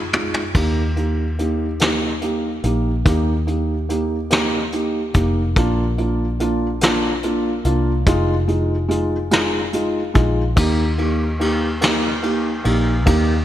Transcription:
Already playing: fingered electric bass F1
0.13 fingered electric bass A#1, felt piano G#3 D#4 F4, floor tom
0.34 floor tom
0.55 fingered electric bass D#2, felt piano A#3 D#4 G4, kick, crash
0.97 felt piano A#3 D#4 G4, closed hi-hat
1.39 felt piano A#3 D#4 G4, closed hi-hat
1.80 felt piano A#3 D#4 G4, snare, closed hi-hat
2.22 felt piano A#3 D#4 G4, closed hi-hat
2.64 fingered electric bass A#1, felt piano A#3 D#4 G4, closed hi-hat
3.05 fingered electric bass D#2, felt piano A#3 D#4 G4, kick, closed hi-hat
3.47 felt piano A#3 D#4 G4, closed hi-hat
3.89 felt piano A#3 D#4 G4, closed hi-hat
4.31 felt piano A#3 D#4 G4, snare, closed hi-hat
4.72 felt piano A#3 D#4 G4, closed hi-hat
5.14 fingered electric bass F1, felt piano A#3 D#4 G4, kick, closed hi-hat
5.56 fingered electric bass A#1, felt piano A#3 D4 F4, kick, closed hi-hat
5.98 felt piano A#3 D4 F4, closed hi-hat
6.40 felt piano A#3 D4 F4, closed hi-hat
6.81 felt piano A#3 D4 F4, snare, closed hi-hat
7.23 felt piano A#3 D4 F4, closed hi-hat
7.65 fingered electric bass C2, felt piano A#3 D4 F4, closed hi-hat
8.06 fingered electric bass F1, felt piano G#3 D#4 F4, kick, closed hi-hat
8.47 felt piano G#3 D#4 F4, closed hi-hat
8.88 felt piano G#3 D#4 F4, closed hi-hat
9.31 felt piano G#3 D#4 F4, snare, closed hi-hat
9.73 felt piano G#3 D#4 F4, closed hi-hat
10.14 fingered electric bass A#1, felt piano G#3 D#4 F4, kick, closed hi-hat
10.56 fingered electric bass D#2, felt piano A#3 D#4 G4, kick, crash
10.98 felt piano A#3 D#4 G4, ride
11.40 felt piano A#3 D#4 G4, ride
11.81 felt piano A#3 D#4 G4, snare, ride
12.23 felt piano A#3 D#4 G4, ride
12.64 fingered electric bass A#1, felt piano A#3 D#4 G4, ride
13.06 fingered electric bass D#2, felt piano A#3 D#4 G4, kick, ride

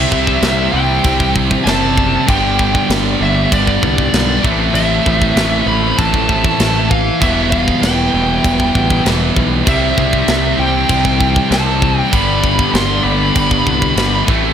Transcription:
Already playing: distorted electric guitar C3 G3 C4, string section E3 C4 G4 E5, overdriven electric guitar E4, lead electric guitar E5
0.12 picked electric bass C2, kick
0.27 kick
0.42 picked electric bass C2, snare, crash
0.71 picked electric bass C2, distorted electric guitar C3 G3 C4, lead electric guitar G5
1.04 picked electric bass C2, kick, crash
1.20 kick
1.36 kick
1.51 kick
1.64 picked electric bass F#1, distorted electric guitar C3 G3 C4, lead electric guitar A5, snare, crash
1.98 kick
2.26 picked electric bass G1, distorted electric guitar G2 D3, string section D3 B3 D5, overdriven electric guitar B3, lead electric guitar G5, kick, crash
2.30 distorted electric guitar G3, overdriven electric guitar D4
2.59 kick
2.75 kick
2.90 picked electric bass G1, snare, crash
3.20 picked electric bass G1, distorted electric guitar G2 D3 G3, lead electric guitar E5
3.52 picked electric bass G1, lead electric guitar D5, kick, crash
3.67 kick
3.83 picked electric bass C2, kick
3.98 kick
4.13 picked electric bass B1, distorted electric guitar G2 D3 G3, snare, crash
4.42 picked electric bass A1, distorted electric guitar A2 E3 A3, string section E3 C4 A4 C5, overdriven electric guitar C4, kick
4.47 overdriven electric guitar E4
4.73 picked electric bass A1, lead electric guitar E5, crash
5.06 picked electric bass A1, kick
5.22 kick
5.36 picked electric bass A1, distorted electric guitar A2 E3 A3, snare, crash
5.66 picked electric bass A1, lead electric guitar B5
5.98 picked electric bass A1, lead electric guitar A5, kick, crash
6.14 kick
6.28 distorted electric guitar A2 E3 A3, kick
6.44 kick
6.60 picked electric bass A1, snare, crash
6.91 lead electric guitar F5, kick
7.20 picked electric bass E1, distorted electric guitar E2 B2 E3, overdriven electric guitar G3 B3, string section B3 G4 B4, lead electric guitar E5, kick, crash
7.24 overdriven electric guitar E4
7.51 lead electric guitar F5, kick
7.68 kick
7.82 picked electric bass E1, lead electric guitar G5, snare, crash
8.12 picked electric bass E1, distorted electric guitar E2 B2 E3
8.44 picked electric bass E1, kick, crash
8.60 kick
8.75 picked electric bass A1, kick
8.90 kick
9.03 picked electric bass E1, distorted electric guitar E2 B2 E3, snare, crash
9.36 picked electric bass B1, kick
9.63 distorted electric guitar C3 G3, string section E3 C4 C5, kick, crash
9.68 picked electric bass C2, distorted electric guitar C4, overdriven electric guitar E4, lead electric guitar E5
9.98 picked electric bass C2, kick
10.13 kick
10.28 picked electric bass C2, snare, crash
10.57 picked electric bass C2, distorted electric guitar C3 G3 C4, lead electric guitar G5
10.89 picked electric bass C2, kick, crash
11.05 kick
11.21 kick
11.36 kick
11.49 picked electric bass C2, distorted electric guitar C3 G3 C4, lead electric guitar A5, snare, crash
11.82 kick
12.00 lead electric guitar G5
12.11 picked electric bass G1, distorted electric guitar G2 D3 G3, string section D3 B3 D5, overdriven electric guitar B3 D4, lead electric guitar B5, kick, crash
12.44 kick
12.59 kick
12.74 picked electric bass G1, lead electric guitar C6, snare, crash
13.03 picked electric bass G1, distorted electric guitar G2 D3 G3, lead electric guitar B5
13.35 picked electric bass G1, kick, crash
13.51 kick
13.67 picked electric bass C2, kick
13.82 kick
13.95 picked electric bass G1, distorted electric guitar G2 D3 G3, snare, crash
14.26 picked electric bass A1, distorted electric guitar A2 E3 A3, string section C4 E4 A4 E5, overdriven electric guitar C4, kick
14.31 overdriven electric guitar E4

